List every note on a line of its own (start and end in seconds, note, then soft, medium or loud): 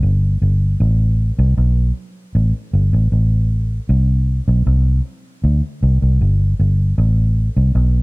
0.03 0.36 G1 medium
0.42 0.75 G1 medium
0.80 1.31 A1 loud
1.39 1.54 C2 loud
1.57 1.90 B1 medium
2.35 2.51 A1 medium
2.73 2.90 G1 medium
2.93 3.09 A1 medium
3.12 3.79 A1 medium
3.89 4.39 C2 loud
4.48 4.63 B1 medium
4.67 4.99 C2 medium
5.44 5.60 D2 medium
5.83 5.99 C2 loud
6.02 6.18 C2 medium
6.21 6.54 G1 medium
6.59 6.92 G1 medium
6.98 7.48 A1 loud
7.57 7.72 C2 medium
7.75 8.03 B1 medium